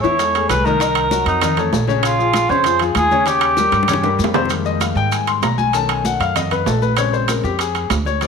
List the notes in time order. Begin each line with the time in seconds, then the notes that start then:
0.02 E2 E3 E4 C#5 E5, high bongo, high conga, maracas
0.19 G#3 G#4 A4, high bongo, high conga, high timbale, maracas
0.34 A3 G#4 A4, high bongo, high conga, high timbale, maracas
0.49 C2 B4, high bongo, low bongo, high conga, high timbale, maracas
0.65 D#3 D#4 A#4 D#5, high bongo, high conga, maracas
0.80 D#3 D#4 D#5, high bongo, high conga, high timbale, maracas
0.95 high conga, high timbale, maracas
1.11 F#3 F#4 A#4, high bongo, high conga, maracas
1.26 F2 D#4, high bongo, high conga, high timbale, maracas
1.41 D#3 D#4 D#5, high bongo, high conga, low conga, high timbale, maracas
1.57 A3 A4 C#5, high bongo, high conga, low conga, high timbale, maracas
1.73 A#1, high bongo, low bongo, high conga, low timbale, maracas
1.87 C#3 C#4 C#5, high bongo, high conga, maracas
2.03 F4, high bongo, high conga, high timbale, maracas
2.19 F3 F4 G#4, high conga, maracas
2.33 high bongo, high conga, high timbale, maracas
2.49 F2 C#3 C#4 C5 C#5, high bongo, high conga, maracas
2.64 F3 F4 G#4, high bongo, high conga, high timbale, maracas
2.79 F3 F4 G#4, high bongo, high conga, high timbale, maracas
2.95 D#2 G#4, high bongo, low bongo, high conga, high timbale, maracas
3.11 C#3 C#4 C#5, high bongo, high conga, maracas
3.26 C#3 C#4 G4 C#5, high bongo, high conga, high timbale, maracas
3.41 high conga, high timbale, maracas
3.57 G3 G4 A#4, high bongo, high conga, maracas
3.72 G2, high bongo, high timbale, maracas
3.83 high bongo
3.88 C#3 C#4 C#5, high conga, low conga, high timbale, maracas
3.93 high bongo
4.03 G3 G4 A#4, high bongo, high conga, high timbale, maracas
4.19 F2, high conga, maracas
4.24 low bongo, low timbale
4.34 C3 C4 C5, low bongo, high conga, low timbale, maracas
4.45 low bongo
4.50 D#3 G3 G#3 A#3, high conga, high timbale, maracas
4.65 D#5, high conga, maracas
4.81 F5, high conga, high timbale, maracas
4.95 G#2 G5, high conga, maracas
5.12 G#5, high conga, high timbale, maracas
5.27 C6, high conga, high timbale, maracas
5.42 B1 A#5, high conga, high timbale, low timbale, maracas
5.58 G#5, high conga, maracas
5.73 D#3 A3 C#4 A5, high timbale, maracas
5.89 G#5, high conga, high timbale, maracas
6.05 F#5, high conga, maracas
6.20 F#2 F5, high conga, high timbale, maracas
6.36 D#5, high conga, low conga, high timbale, maracas
6.51 B4, high conga, low conga, high timbale, maracas
6.66 A#1 A4, high conga, low timbale, maracas
6.82 B4, high conga, maracas
6.97 C#3 G#3 C4 C#5, high timbale, maracas
7.13 C5, high conga, maracas
7.28 A#4, high conga, high timbale, maracas
7.44 F2 G4, maracas
7.59 G#4, high conga, high timbale, maracas
7.75 high conga, high timbale, maracas
7.90 D2, high conga, high timbale, low timbale, maracas
8.06 C#5, high conga, maracas
8.21 F3 G#3 C4 D5, high timbale, maracas